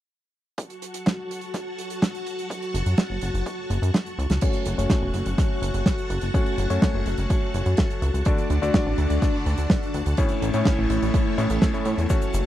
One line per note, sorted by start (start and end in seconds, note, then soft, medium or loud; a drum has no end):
0.58 4.38 F#4 medium
0.58 4.38 F#5 medium
0.58 4.38 A5 medium
0.58 4.38 C#6 medium
0.58 kick loud
0.58 closed hi-hat medium
0.70 closed hi-hat soft
0.82 closed hi-hat medium
0.94 closed hi-hat medium
1.06 kick loud
1.06 snare loud
1.06 closed hi-hat medium
1.31 closed hi-hat medium
1.41 closed hi-hat medium
1.54 kick loud
1.54 snare soft
1.54 closed hi-hat medium
1.78 closed hi-hat medium
1.90 closed hi-hat medium
2.02 kick loud
2.02 snare loud
2.02 closed hi-hat medium
2.15 closed hi-hat medium
2.26 closed hi-hat medium
2.39 closed hi-hat medium
2.50 kick loud
2.50 closed hi-hat medium
2.62 closed hi-hat medium
2.74 2.83 F#1 medium
2.74 closed hi-hat medium
2.86 2.95 F#2 medium
2.86 closed hi-hat medium
2.97 kick loud
2.97 snare loud
2.97 closed hi-hat medium
3.10 3.19 F#1 medium
3.21 3.31 F#1 medium
3.21 closed hi-hat medium
3.34 3.43 F#1 medium
3.34 closed hi-hat medium
3.46 kick loud
3.46 closed hi-hat medium
3.70 3.79 F#1 medium
3.70 closed hi-hat medium
3.82 3.91 F#2 medium
3.82 closed hi-hat medium
3.94 kick loud
3.94 snare loud
3.94 closed hi-hat medium
4.06 closed hi-hat medium
4.18 4.27 C#2 loud
4.18 closed hi-hat medium
4.30 4.39 C#2 medium
4.30 snare medium
4.30 closed hi-hat medium
4.41 4.75 A3 medium
4.41 4.75 C#4 medium
4.41 8.22 F#4 medium
4.41 4.75 F#4 medium
4.41 4.75 C#5 medium
4.41 8.22 F#5 medium
4.41 12.46 A5 medium
4.41 8.22 C#6 medium
4.41 kick loud
4.41 closed hi-hat medium
4.41 crash medium
4.53 closed hi-hat soft
4.65 4.75 F#1 medium
4.65 closed hi-hat medium
4.78 4.87 F#1 medium
4.78 6.31 A3 loud
4.78 6.31 C#4 medium
4.78 6.31 F#4 medium
4.78 6.31 C#5 loud
4.78 closed hi-hat medium
4.90 kick loud
4.90 snare loud
4.90 closed hi-hat medium
5.02 5.11 E1 medium
5.14 5.23 F#1 medium
5.14 closed hi-hat medium
5.26 5.35 F#1 medium
5.26 closed hi-hat medium
5.38 kick loud
5.38 snare soft
5.38 closed hi-hat medium
5.62 5.71 F#1 loud
5.62 closed hi-hat medium
5.74 5.83 F#1 medium
5.74 closed hi-hat medium
5.86 kick loud
5.86 snare loud
5.86 closed hi-hat medium
5.98 closed hi-hat medium
6.10 6.19 F#1 loud
6.10 closed hi-hat medium
6.21 6.31 F#1 medium
6.21 closed hi-hat medium
6.34 6.67 A3 medium
6.34 6.67 C#4 medium
6.34 6.67 F#4 medium
6.34 6.67 C#5 medium
6.34 kick loud
6.34 closed hi-hat medium
6.46 closed hi-hat soft
6.58 6.67 F#1 medium
6.58 closed hi-hat medium
6.70 6.79 F#2 medium
6.70 8.23 A3 loud
6.70 8.23 C#4 medium
6.70 8.23 F#4 medium
6.70 8.23 C#5 loud
6.70 closed hi-hat medium
6.82 kick loud
6.82 snare loud
6.82 closed hi-hat medium
6.94 7.03 F#1 medium
7.06 7.15 F#1 medium
7.06 closed hi-hat medium
7.18 7.27 F#1 medium
7.18 closed hi-hat medium
7.30 kick loud
7.30 closed hi-hat medium
7.54 7.63 F#1 medium
7.54 closed hi-hat medium
7.66 7.75 F#2 medium
7.66 closed hi-hat medium
7.77 kick loud
7.77 snare loud
7.77 closed hi-hat medium
7.90 closed hi-hat soft
8.02 8.11 C#2 loud
8.02 closed hi-hat medium
8.14 8.23 C#2 medium
8.14 closed hi-hat medium
8.25 8.59 D3 medium
8.25 8.59 A3 medium
8.25 10.16 D4 medium
8.25 8.59 D4 medium
8.25 8.59 F#4 medium
8.25 10.16 D5 medium
8.25 8.59 D5 loud
8.25 10.16 F#5 medium
8.25 kick loud
8.25 closed hi-hat medium
8.38 closed hi-hat soft
8.50 8.59 D2 loud
8.50 closed hi-hat medium
8.62 8.71 D2 medium
8.62 10.15 D3 loud
8.62 10.15 A3 medium
8.62 10.15 D4 medium
8.62 10.15 F#4 medium
8.62 10.15 D5 loud
8.62 closed hi-hat medium
8.74 kick loud
8.74 snare loud
8.74 closed hi-hat medium
8.86 8.95 A1 medium
8.98 9.07 D2 medium
8.98 closed hi-hat medium
9.10 9.19 D2 medium
9.10 closed hi-hat medium
9.22 kick loud
9.22 snare soft
9.22 closed hi-hat medium
9.46 9.55 D2 medium
9.46 closed hi-hat medium
9.58 9.67 D2 medium
9.58 closed hi-hat medium
9.70 kick loud
9.70 snare loud
9.70 closed hi-hat medium
9.83 closed hi-hat soft
9.94 10.03 D2 medium
9.94 closed hi-hat medium
10.06 10.15 D2 medium
10.06 closed hi-hat medium
10.17 10.51 A2 medium
10.17 10.51 A3 medium
10.17 12.08 A3 medium
10.17 10.51 C#4 medium
10.17 10.51 E4 medium
10.17 12.08 E4 medium
10.17 10.51 C#5 medium
10.17 12.08 C#5 medium
10.17 kick loud
10.17 closed hi-hat medium
10.29 closed hi-hat soft
10.42 10.51 A1 loud
10.42 closed hi-hat medium
10.54 11.36 A2 loud
10.54 10.63 A2 medium
10.54 11.36 A3 medium
10.54 11.36 C#4 medium
10.54 11.36 E4 medium
10.54 11.36 C#5 loud
10.54 closed hi-hat medium
10.65 kick loud
10.65 snare loud
10.65 closed hi-hat medium
10.78 10.87 A1 medium
10.90 10.99 A1 medium
10.90 closed hi-hat medium
11.02 11.11 A1 medium
11.02 closed hi-hat medium
11.14 kick loud
11.14 closed hi-hat medium
11.38 11.47 A1 loud
11.38 11.71 A2 medium
11.38 11.71 A3 medium
11.38 11.71 C#4 medium
11.38 11.71 E4 medium
11.38 11.71 C#5 loud
11.38 closed hi-hat medium
11.50 11.59 A1 medium
11.50 closed hi-hat medium
11.62 kick loud
11.62 snare loud
11.62 closed hi-hat medium
11.74 12.07 A2 medium
11.74 12.07 A3 medium
11.74 12.07 C#4 medium
11.74 12.07 E4 medium
11.74 12.07 C#5 medium
11.74 closed hi-hat medium
11.85 11.95 A2 loud
11.85 closed hi-hat medium
11.98 12.07 E2 medium
11.98 closed hi-hat medium
12.09 12.43 A3 medium
12.09 12.43 C#4 medium
12.09 12.43 F#4 medium
12.09 12.46 F#4 medium
12.09 12.43 C#5 medium
12.09 12.46 F#5 medium
12.09 12.46 C#6 medium
12.09 kick loud
12.09 closed hi-hat medium
12.09 cabasa medium
12.22 closed hi-hat soft
12.22 cabasa soft
12.34 12.43 F#1 medium
12.34 closed hi-hat medium
12.34 cabasa medium